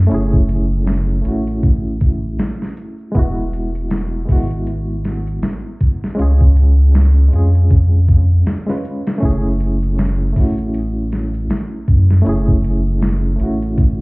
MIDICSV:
0, 0, Header, 1, 4, 480
1, 0, Start_track
1, 0, Key_signature, 3, "minor"
1, 0, Tempo, 759494
1, 68, Time_signature, 4, 2, 24, 8
1, 8856, End_track
2, 0, Start_track
2, 0, Title_t, "Reed electric piano"
2, 0, Program_c, 0, 4
2, 0, Control_c, 0, 64, 127
2, 0, Note_on_c, 0, 57, 69
2, 0, Note_on_c, 0, 61, 62
2, 0, Note_on_c, 0, 64, 64
2, 0, Note_on_c, 0, 66, 76
2, 44, Note_off_c, 0, 57, 0
2, 44, Note_on_c, 0, 57, 90
2, 61, Note_off_c, 0, 61, 0
2, 61, Note_on_c, 0, 61, 80
2, 72, Note_off_c, 0, 64, 0
2, 72, Note_on_c, 0, 64, 83
2, 91, Note_on_c, 0, 68, 97
2, 752, Note_off_c, 0, 57, 0
2, 761, Note_off_c, 0, 61, 0
2, 766, Note_off_c, 0, 64, 0
2, 767, Note_on_c, 0, 57, 69
2, 776, Note_off_c, 0, 68, 0
2, 784, Note_on_c, 0, 61, 63
2, 796, Note_on_c, 0, 64, 63
2, 812, Note_off_c, 0, 66, 0
2, 812, Note_on_c, 0, 66, 71
2, 1954, Note_off_c, 0, 57, 0
2, 1962, Note_off_c, 0, 61, 0
2, 1968, Note_off_c, 0, 64, 0
2, 1970, Note_on_c, 0, 56, 89
2, 1976, Note_off_c, 0, 66, 0
2, 1988, Note_on_c, 0, 59, 85
2, 1996, Control_c, 0, 64, 0
2, 2001, Note_on_c, 0, 64, 79
2, 2017, Note_on_c, 0, 66, 97
2, 2092, Control_c, 0, 64, 127
2, 2675, Note_off_c, 0, 56, 0
2, 2684, Note_off_c, 0, 59, 0
2, 2688, Note_on_c, 0, 56, 69
2, 2691, Note_off_c, 0, 64, 0
2, 2699, Note_off_c, 0, 66, 0
2, 2701, Note_on_c, 0, 59, 65
2, 2717, Note_on_c, 0, 64, 62
2, 2731, Note_on_c, 0, 66, 79
2, 3874, Note_off_c, 0, 56, 0
2, 3881, Note_off_c, 0, 59, 0
2, 3886, Note_on_c, 0, 56, 90
2, 3889, Note_off_c, 0, 64, 0
2, 3896, Note_off_c, 0, 66, 0
2, 3899, Note_on_c, 0, 61, 80
2, 3915, Note_on_c, 0, 65, 81
2, 3917, Control_c, 0, 64, 0
2, 3929, Note_on_c, 0, 68, 94
2, 4023, Control_c, 0, 64, 127
2, 4594, Note_off_c, 0, 56, 0
2, 4600, Note_off_c, 0, 61, 0
2, 4603, Note_on_c, 0, 56, 67
2, 4608, Note_off_c, 0, 65, 0
2, 4615, Note_off_c, 0, 68, 0
2, 4618, Note_on_c, 0, 61, 63
2, 4633, Note_on_c, 0, 65, 64
2, 4650, Note_on_c, 0, 68, 75
2, 5448, Note_off_c, 0, 56, 0
2, 5456, Note_off_c, 0, 61, 0
2, 5463, Note_off_c, 0, 65, 0
2, 5472, Note_off_c, 0, 68, 0
2, 5478, Note_on_c, 0, 56, 74
2, 5485, Note_on_c, 0, 61, 67
2, 5494, Note_on_c, 0, 65, 64
2, 5499, Note_on_c, 0, 71, 79
2, 5799, Note_off_c, 0, 56, 0
2, 5802, Note_on_c, 0, 57, 88
2, 5803, Note_off_c, 0, 61, 0
2, 5807, Note_off_c, 0, 65, 0
2, 5810, Note_off_c, 0, 71, 0
2, 5817, Note_on_c, 0, 61, 83
2, 5832, Note_on_c, 0, 64, 80
2, 5836, Control_c, 0, 64, 0
2, 5847, Note_on_c, 0, 68, 97
2, 5948, Control_c, 0, 64, 127
2, 6511, Note_off_c, 0, 57, 0
2, 6519, Note_off_c, 0, 61, 0
2, 6525, Note_on_c, 0, 57, 70
2, 6526, Note_off_c, 0, 64, 0
2, 6534, Note_off_c, 0, 68, 0
2, 6541, Note_on_c, 0, 61, 58
2, 6556, Note_on_c, 0, 64, 63
2, 6572, Note_on_c, 0, 66, 75
2, 7713, Note_off_c, 0, 57, 0
2, 7721, Note_off_c, 0, 61, 0
2, 7722, Note_on_c, 0, 57, 90
2, 7729, Note_off_c, 0, 64, 0
2, 7736, Note_off_c, 0, 66, 0
2, 7737, Note_on_c, 0, 61, 80
2, 7752, Note_on_c, 0, 64, 80
2, 7767, Note_on_c, 0, 68, 98
2, 8431, Note_off_c, 0, 57, 0
2, 8439, Note_off_c, 0, 61, 0
2, 8443, Note_on_c, 0, 57, 70
2, 8446, Note_off_c, 0, 64, 0
2, 8454, Note_off_c, 0, 68, 0
2, 8458, Note_on_c, 0, 61, 63
2, 8473, Note_on_c, 0, 64, 61
2, 8490, Note_on_c, 0, 66, 79
2, 8856, Note_off_c, 0, 57, 0
2, 8856, Note_off_c, 0, 61, 0
2, 8856, Note_off_c, 0, 64, 0
2, 8856, Note_off_c, 0, 66, 0
2, 8856, End_track
3, 0, Start_track
3, 0, Title_t, "Sub bass"
3, 0, Program_c, 1, 38
3, 71, Note_on_c, 1, 30, 88
3, 771, Note_off_c, 1, 30, 0
3, 790, Note_on_c, 1, 33, 96
3, 1490, Note_off_c, 1, 33, 0
3, 1992, Note_on_c, 1, 28, 92
3, 2691, Note_off_c, 1, 28, 0
3, 2713, Note_on_c, 1, 32, 98
3, 3412, Note_off_c, 1, 32, 0
3, 3912, Note_on_c, 1, 37, 88
3, 4611, Note_off_c, 1, 37, 0
3, 4631, Note_on_c, 1, 41, 90
3, 5331, Note_off_c, 1, 41, 0
3, 5831, Note_on_c, 1, 30, 81
3, 6531, Note_off_c, 1, 30, 0
3, 6551, Note_on_c, 1, 33, 96
3, 7251, Note_off_c, 1, 33, 0
3, 7509, Note_on_c, 1, 42, 101
3, 7725, Note_off_c, 1, 42, 0
3, 7750, Note_on_c, 1, 30, 87
3, 8450, Note_off_c, 1, 30, 0
3, 8467, Note_on_c, 1, 33, 97
3, 8856, Note_off_c, 1, 33, 0
3, 8856, End_track
4, 0, Start_track
4, 0, Title_t, "Drums"
4, 65, Note_on_c, 9, 82, 52
4, 69, Note_on_c, 9, 42, 80
4, 128, Note_off_c, 9, 82, 0
4, 132, Note_off_c, 9, 42, 0
4, 210, Note_on_c, 9, 36, 87
4, 213, Note_on_c, 9, 82, 37
4, 273, Note_off_c, 9, 36, 0
4, 276, Note_off_c, 9, 82, 0
4, 310, Note_on_c, 9, 42, 63
4, 310, Note_on_c, 9, 82, 82
4, 373, Note_off_c, 9, 42, 0
4, 373, Note_off_c, 9, 82, 0
4, 448, Note_on_c, 9, 82, 34
4, 511, Note_off_c, 9, 82, 0
4, 549, Note_on_c, 9, 42, 83
4, 552, Note_on_c, 9, 38, 101
4, 612, Note_off_c, 9, 42, 0
4, 616, Note_off_c, 9, 38, 0
4, 689, Note_on_c, 9, 82, 36
4, 752, Note_off_c, 9, 82, 0
4, 789, Note_on_c, 9, 42, 61
4, 792, Note_on_c, 9, 82, 76
4, 853, Note_off_c, 9, 42, 0
4, 855, Note_off_c, 9, 82, 0
4, 928, Note_on_c, 9, 82, 32
4, 930, Note_on_c, 9, 42, 46
4, 992, Note_off_c, 9, 82, 0
4, 993, Note_off_c, 9, 42, 0
4, 1028, Note_on_c, 9, 82, 54
4, 1031, Note_on_c, 9, 36, 106
4, 1031, Note_on_c, 9, 42, 84
4, 1091, Note_off_c, 9, 82, 0
4, 1094, Note_off_c, 9, 36, 0
4, 1095, Note_off_c, 9, 42, 0
4, 1265, Note_on_c, 9, 82, 84
4, 1270, Note_on_c, 9, 42, 66
4, 1271, Note_on_c, 9, 36, 88
4, 1328, Note_off_c, 9, 82, 0
4, 1333, Note_off_c, 9, 42, 0
4, 1334, Note_off_c, 9, 36, 0
4, 1403, Note_on_c, 9, 82, 36
4, 1467, Note_off_c, 9, 82, 0
4, 1504, Note_on_c, 9, 82, 52
4, 1510, Note_on_c, 9, 42, 76
4, 1514, Note_on_c, 9, 38, 104
4, 1567, Note_off_c, 9, 82, 0
4, 1573, Note_off_c, 9, 42, 0
4, 1577, Note_off_c, 9, 38, 0
4, 1657, Note_on_c, 9, 38, 40
4, 1720, Note_off_c, 9, 38, 0
4, 1747, Note_on_c, 9, 82, 94
4, 1751, Note_on_c, 9, 42, 65
4, 1810, Note_off_c, 9, 82, 0
4, 1814, Note_off_c, 9, 42, 0
4, 1883, Note_on_c, 9, 82, 41
4, 1947, Note_off_c, 9, 82, 0
4, 1982, Note_on_c, 9, 82, 49
4, 1991, Note_on_c, 9, 36, 108
4, 1991, Note_on_c, 9, 42, 80
4, 2046, Note_off_c, 9, 82, 0
4, 2054, Note_off_c, 9, 36, 0
4, 2054, Note_off_c, 9, 42, 0
4, 2125, Note_on_c, 9, 82, 34
4, 2188, Note_off_c, 9, 82, 0
4, 2225, Note_on_c, 9, 82, 93
4, 2232, Note_on_c, 9, 42, 63
4, 2288, Note_off_c, 9, 82, 0
4, 2295, Note_off_c, 9, 42, 0
4, 2368, Note_on_c, 9, 82, 37
4, 2370, Note_on_c, 9, 42, 36
4, 2431, Note_off_c, 9, 82, 0
4, 2433, Note_off_c, 9, 42, 0
4, 2469, Note_on_c, 9, 42, 83
4, 2472, Note_on_c, 9, 38, 101
4, 2532, Note_off_c, 9, 42, 0
4, 2536, Note_off_c, 9, 38, 0
4, 2606, Note_on_c, 9, 82, 32
4, 2669, Note_off_c, 9, 82, 0
4, 2705, Note_on_c, 9, 82, 82
4, 2710, Note_on_c, 9, 36, 88
4, 2710, Note_on_c, 9, 46, 72
4, 2768, Note_off_c, 9, 82, 0
4, 2773, Note_off_c, 9, 36, 0
4, 2773, Note_off_c, 9, 46, 0
4, 2849, Note_on_c, 9, 82, 33
4, 2850, Note_on_c, 9, 42, 45
4, 2913, Note_off_c, 9, 42, 0
4, 2913, Note_off_c, 9, 82, 0
4, 2946, Note_on_c, 9, 82, 57
4, 2950, Note_on_c, 9, 42, 80
4, 3009, Note_off_c, 9, 82, 0
4, 3013, Note_off_c, 9, 42, 0
4, 3186, Note_on_c, 9, 82, 93
4, 3189, Note_on_c, 9, 42, 61
4, 3193, Note_on_c, 9, 38, 49
4, 3249, Note_off_c, 9, 82, 0
4, 3252, Note_off_c, 9, 42, 0
4, 3256, Note_off_c, 9, 38, 0
4, 3327, Note_on_c, 9, 82, 41
4, 3331, Note_on_c, 9, 42, 38
4, 3391, Note_off_c, 9, 82, 0
4, 3394, Note_off_c, 9, 42, 0
4, 3428, Note_on_c, 9, 42, 74
4, 3430, Note_on_c, 9, 82, 51
4, 3432, Note_on_c, 9, 38, 99
4, 3491, Note_off_c, 9, 42, 0
4, 3493, Note_off_c, 9, 82, 0
4, 3495, Note_off_c, 9, 38, 0
4, 3669, Note_on_c, 9, 42, 66
4, 3670, Note_on_c, 9, 36, 90
4, 3674, Note_on_c, 9, 82, 81
4, 3732, Note_off_c, 9, 42, 0
4, 3733, Note_off_c, 9, 36, 0
4, 3737, Note_off_c, 9, 82, 0
4, 3815, Note_on_c, 9, 82, 37
4, 3817, Note_on_c, 9, 38, 51
4, 3878, Note_off_c, 9, 82, 0
4, 3880, Note_off_c, 9, 38, 0
4, 3912, Note_on_c, 9, 42, 79
4, 3912, Note_on_c, 9, 82, 48
4, 3975, Note_off_c, 9, 42, 0
4, 3975, Note_off_c, 9, 82, 0
4, 4050, Note_on_c, 9, 36, 89
4, 4054, Note_on_c, 9, 82, 35
4, 4113, Note_off_c, 9, 36, 0
4, 4118, Note_off_c, 9, 82, 0
4, 4144, Note_on_c, 9, 82, 88
4, 4149, Note_on_c, 9, 42, 66
4, 4207, Note_off_c, 9, 82, 0
4, 4213, Note_off_c, 9, 42, 0
4, 4293, Note_on_c, 9, 82, 39
4, 4356, Note_off_c, 9, 82, 0
4, 4385, Note_on_c, 9, 82, 55
4, 4389, Note_on_c, 9, 42, 86
4, 4393, Note_on_c, 9, 38, 111
4, 4448, Note_off_c, 9, 82, 0
4, 4452, Note_off_c, 9, 42, 0
4, 4456, Note_off_c, 9, 38, 0
4, 4526, Note_on_c, 9, 82, 36
4, 4590, Note_off_c, 9, 82, 0
4, 4626, Note_on_c, 9, 82, 90
4, 4632, Note_on_c, 9, 42, 60
4, 4689, Note_off_c, 9, 82, 0
4, 4696, Note_off_c, 9, 42, 0
4, 4767, Note_on_c, 9, 82, 33
4, 4771, Note_on_c, 9, 42, 44
4, 4830, Note_off_c, 9, 82, 0
4, 4834, Note_off_c, 9, 42, 0
4, 4866, Note_on_c, 9, 82, 57
4, 4870, Note_on_c, 9, 36, 104
4, 4870, Note_on_c, 9, 42, 79
4, 4929, Note_off_c, 9, 82, 0
4, 4933, Note_off_c, 9, 36, 0
4, 4934, Note_off_c, 9, 42, 0
4, 5103, Note_on_c, 9, 82, 85
4, 5109, Note_on_c, 9, 42, 60
4, 5110, Note_on_c, 9, 36, 88
4, 5167, Note_off_c, 9, 82, 0
4, 5172, Note_off_c, 9, 42, 0
4, 5173, Note_off_c, 9, 36, 0
4, 5247, Note_on_c, 9, 82, 34
4, 5310, Note_off_c, 9, 82, 0
4, 5345, Note_on_c, 9, 82, 56
4, 5349, Note_on_c, 9, 42, 72
4, 5352, Note_on_c, 9, 38, 99
4, 5408, Note_off_c, 9, 82, 0
4, 5412, Note_off_c, 9, 42, 0
4, 5416, Note_off_c, 9, 38, 0
4, 5494, Note_on_c, 9, 38, 43
4, 5557, Note_off_c, 9, 38, 0
4, 5587, Note_on_c, 9, 82, 86
4, 5593, Note_on_c, 9, 42, 64
4, 5650, Note_off_c, 9, 82, 0
4, 5656, Note_off_c, 9, 42, 0
4, 5730, Note_on_c, 9, 42, 75
4, 5734, Note_on_c, 9, 38, 97
4, 5794, Note_off_c, 9, 42, 0
4, 5797, Note_off_c, 9, 38, 0
4, 5823, Note_on_c, 9, 82, 45
4, 5829, Note_on_c, 9, 36, 105
4, 5830, Note_on_c, 9, 42, 78
4, 5887, Note_off_c, 9, 82, 0
4, 5892, Note_off_c, 9, 36, 0
4, 5893, Note_off_c, 9, 42, 0
4, 5965, Note_on_c, 9, 82, 32
4, 6028, Note_off_c, 9, 82, 0
4, 6064, Note_on_c, 9, 82, 88
4, 6070, Note_on_c, 9, 42, 68
4, 6127, Note_off_c, 9, 82, 0
4, 6133, Note_off_c, 9, 42, 0
4, 6204, Note_on_c, 9, 82, 35
4, 6211, Note_on_c, 9, 42, 38
4, 6267, Note_off_c, 9, 82, 0
4, 6275, Note_off_c, 9, 42, 0
4, 6299, Note_on_c, 9, 82, 54
4, 6310, Note_on_c, 9, 42, 84
4, 6314, Note_on_c, 9, 38, 114
4, 6362, Note_off_c, 9, 82, 0
4, 6373, Note_off_c, 9, 42, 0
4, 6377, Note_off_c, 9, 38, 0
4, 6439, Note_on_c, 9, 82, 37
4, 6502, Note_off_c, 9, 82, 0
4, 6543, Note_on_c, 9, 82, 87
4, 6549, Note_on_c, 9, 36, 89
4, 6549, Note_on_c, 9, 46, 70
4, 6606, Note_off_c, 9, 82, 0
4, 6612, Note_off_c, 9, 36, 0
4, 6612, Note_off_c, 9, 46, 0
4, 6689, Note_on_c, 9, 42, 41
4, 6689, Note_on_c, 9, 82, 34
4, 6752, Note_off_c, 9, 82, 0
4, 6753, Note_off_c, 9, 42, 0
4, 6781, Note_on_c, 9, 82, 51
4, 6789, Note_on_c, 9, 42, 83
4, 6844, Note_off_c, 9, 82, 0
4, 6852, Note_off_c, 9, 42, 0
4, 7023, Note_on_c, 9, 82, 86
4, 7029, Note_on_c, 9, 42, 61
4, 7033, Note_on_c, 9, 38, 47
4, 7086, Note_off_c, 9, 82, 0
4, 7093, Note_off_c, 9, 42, 0
4, 7096, Note_off_c, 9, 38, 0
4, 7166, Note_on_c, 9, 82, 40
4, 7169, Note_on_c, 9, 42, 37
4, 7229, Note_off_c, 9, 82, 0
4, 7232, Note_off_c, 9, 42, 0
4, 7268, Note_on_c, 9, 42, 71
4, 7270, Note_on_c, 9, 82, 50
4, 7272, Note_on_c, 9, 38, 96
4, 7332, Note_off_c, 9, 42, 0
4, 7334, Note_off_c, 9, 82, 0
4, 7335, Note_off_c, 9, 38, 0
4, 7501, Note_on_c, 9, 82, 77
4, 7507, Note_on_c, 9, 36, 86
4, 7507, Note_on_c, 9, 42, 64
4, 7564, Note_off_c, 9, 82, 0
4, 7570, Note_off_c, 9, 36, 0
4, 7570, Note_off_c, 9, 42, 0
4, 7651, Note_on_c, 9, 38, 47
4, 7652, Note_on_c, 9, 82, 32
4, 7714, Note_off_c, 9, 38, 0
4, 7715, Note_off_c, 9, 82, 0
4, 7743, Note_on_c, 9, 82, 52
4, 7747, Note_on_c, 9, 42, 88
4, 7806, Note_off_c, 9, 82, 0
4, 7811, Note_off_c, 9, 42, 0
4, 7886, Note_on_c, 9, 82, 32
4, 7888, Note_on_c, 9, 36, 85
4, 7950, Note_off_c, 9, 82, 0
4, 7951, Note_off_c, 9, 36, 0
4, 7985, Note_on_c, 9, 82, 86
4, 7990, Note_on_c, 9, 42, 69
4, 8049, Note_off_c, 9, 82, 0
4, 8053, Note_off_c, 9, 42, 0
4, 8129, Note_on_c, 9, 82, 33
4, 8193, Note_off_c, 9, 82, 0
4, 8228, Note_on_c, 9, 42, 85
4, 8232, Note_on_c, 9, 38, 109
4, 8291, Note_off_c, 9, 42, 0
4, 8295, Note_off_c, 9, 38, 0
4, 8365, Note_on_c, 9, 82, 29
4, 8428, Note_off_c, 9, 82, 0
4, 8463, Note_on_c, 9, 82, 79
4, 8467, Note_on_c, 9, 42, 61
4, 8526, Note_off_c, 9, 82, 0
4, 8530, Note_off_c, 9, 42, 0
4, 8600, Note_on_c, 9, 82, 34
4, 8610, Note_on_c, 9, 42, 44
4, 8664, Note_off_c, 9, 82, 0
4, 8673, Note_off_c, 9, 42, 0
4, 8707, Note_on_c, 9, 36, 109
4, 8708, Note_on_c, 9, 42, 84
4, 8712, Note_on_c, 9, 82, 52
4, 8770, Note_off_c, 9, 36, 0
4, 8771, Note_off_c, 9, 42, 0
4, 8776, Note_off_c, 9, 82, 0
4, 8856, End_track
0, 0, End_of_file